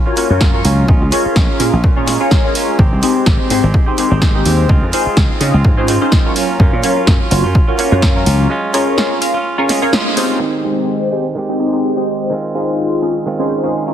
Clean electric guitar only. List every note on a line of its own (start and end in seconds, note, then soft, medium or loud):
0.06 0.17 C#4 medium
0.06 0.17 F4 medium
0.17 0.30 A#3 medium
0.17 0.31 C#4 medium
0.17 0.28 F4 medium
0.29 0.40 C#4 medium
0.29 0.41 F4 medium
0.40 0.54 A#3 medium
0.40 0.54 C#4 loud
0.40 0.52 F4 loud
0.53 0.64 C#4 soft
0.53 0.64 F4 medium
0.64 0.88 A#3 medium
0.64 0.88 C#4 medium
0.64 0.89 F4 medium
0.88 1.10 G#3 medium
0.88 1.12 C#4 medium
0.88 1.13 F4 loud
1.12 1.25 G#3 medium
1.12 1.26 C#4 medium
1.12 1.24 F4 medium
1.25 1.36 C#4 medium
1.25 1.36 F4 medium
1.36 1.49 G#3 medium
1.36 1.50 C#4 medium
1.36 1.47 F4 medium
1.49 1.74 C#4 medium
1.49 1.71 F4 medium
1.72 1.98 C#4 medium
1.72 1.95 F4 medium
1.96 2.07 C#4 medium
1.96 2.07 F4 medium
2.07 2.20 G#3 medium
2.07 2.21 C#4 medium
2.07 2.19 F4 medium
2.20 2.31 C#4 medium
2.20 2.31 F4 medium
2.31 2.53 G#3 medium
2.31 2.55 C#4 medium
2.31 2.56 F4 medium
2.54 2.78 G#3 medium
2.54 2.79 C#4 medium
2.54 2.80 F4 medium
2.78 3.01 D#3 medium
2.78 3.02 G#3 medium
2.78 3.03 C4 loud
2.78 3.03 G4 loud
3.02 3.15 D#3 medium
3.02 3.16 G#3 medium
3.02 3.15 C4 medium
3.02 3.14 G4 medium
3.15 3.25 G#3 medium
3.15 3.26 C4 medium
3.15 3.26 G4 medium
3.27 3.40 G#3 medium
3.27 3.39 C4 loud
3.39 3.64 G#3 soft
3.39 3.63 C4 medium
3.39 3.61 G4 medium
3.63 3.88 G#3 medium
3.63 3.87 C4 medium
3.63 3.85 G4 medium
3.86 3.97 G#3 soft
3.86 3.98 C4 medium
3.86 3.98 G4 medium
3.97 4.11 D#3 medium
3.97 4.11 G#3 medium
3.97 4.11 C4 medium
3.97 4.09 G4 medium
4.10 4.21 G#3 soft
4.10 4.21 C4 medium
4.10 4.21 G4 medium
4.21 4.44 D#3 medium
4.21 4.45 G#3 loud
4.21 4.46 C4 medium
4.21 4.46 G4 loud
4.45 4.68 D#3 medium
4.45 4.69 G#3 medium
4.45 4.69 C4 medium
4.45 4.70 G4 medium
4.69 4.91 D#3 medium
4.69 4.92 G#3 medium
4.69 4.93 C4 medium
4.69 4.94 F4 loud
4.92 5.06 D#3 medium
4.92 5.07 G#3 medium
4.92 5.06 C4 medium
4.92 5.05 F4 medium
5.06 5.16 G#3 soft
5.06 5.17 C4 medium
5.06 5.17 F4 medium
5.18 5.30 C4 loud
5.18 5.28 F4 loud
5.30 5.55 G#3 medium
5.30 5.54 C4 medium
5.30 5.52 F4 medium
5.53 5.79 G#3 medium
5.53 5.78 C4 medium
5.53 5.76 F4 medium
5.77 5.88 G#3 medium
5.77 5.89 C4 medium
5.77 5.88 F4 medium
5.88 6.01 D#3 medium
5.88 6.02 G#3 medium
5.88 6.01 C4 medium
5.88 6.00 F4 medium
6.01 6.11 G#3 medium
6.01 6.12 C4 medium
6.01 6.12 F4 medium
6.12 6.36 D#3 medium
6.12 6.35 G#3 medium
6.12 6.36 C4 medium
6.12 6.37 F4 medium
6.35 6.58 A#3 medium
6.35 6.59 C#4 medium
6.35 6.60 F4 medium
6.59 6.82 A#3 medium
6.59 6.83 C#4 loud
6.59 6.84 F4 medium
6.83 6.96 A#3 medium
6.83 6.97 C#4 medium
6.83 6.95 F4 medium
6.96 7.07 C#4 medium
6.96 7.07 F4 medium
7.07 7.20 A#3 medium
7.07 7.21 C#4 medium
7.07 7.19 F4 medium
7.20 7.45 C#4 soft
7.20 7.43 F4 medium
7.44 7.69 C#4 soft
7.44 7.66 F4 medium
7.67 7.78 C#4 soft
7.67 7.79 F4 medium
7.78 7.92 A#3 medium
7.78 7.92 C#4 medium
7.78 7.90 F4 medium
7.91 8.02 C#4 medium
7.91 8.02 F4 medium
8.02 8.24 A#3 medium
8.02 8.26 C#4 medium
8.02 8.27 F4 loud
8.26 8.49 A#3 medium
8.26 8.49 C#4 medium
8.26 8.50 F4 medium
8.50 8.72 G#3 medium
8.50 8.74 C#4 medium
8.50 8.75 F4 loud
8.73 8.87 G#3 medium
8.73 8.88 C#4 medium
8.73 8.85 F4 medium
8.86 8.97 C#4 medium
8.86 8.97 F4 medium
8.97 9.11 G#3 medium
8.97 9.11 C#4 medium
8.97 9.09 F4 loud
9.10 9.36 C#4 medium
9.10 9.33 F4 medium
9.34 9.60 C#4 medium
9.34 9.57 F4 medium
9.58 9.69 C#4 medium
9.58 9.69 F4 medium
9.69 9.82 G#3 medium
9.69 9.83 C#4 medium
9.69 9.81 F4 medium
9.82 9.93 C#4 soft
9.82 9.93 F4 medium
9.93 10.15 G#3 medium
9.93 10.17 C#4 loud
9.93 10.18 F4 medium
10.16 10.40 G#3 medium
10.16 10.41 C#4 medium
10.16 10.42 F4 medium
10.40 11.34 D#3 medium
10.40 11.36 G#3 medium
10.40 11.37 C4 medium
10.44 11.38 G4 medium
11.35 12.29 D#3 medium
11.35 12.30 G#3 medium
11.35 12.32 C4 medium
11.39 12.33 G4 medium
12.30 13.25 D#3 medium
12.30 13.25 G#3 medium
12.30 13.26 C4 medium
12.34 13.27 F4 medium
13.26 13.94 D#3 medium
13.26 13.94 G#3 medium
13.26 13.94 C4 medium
13.26 13.94 F4 medium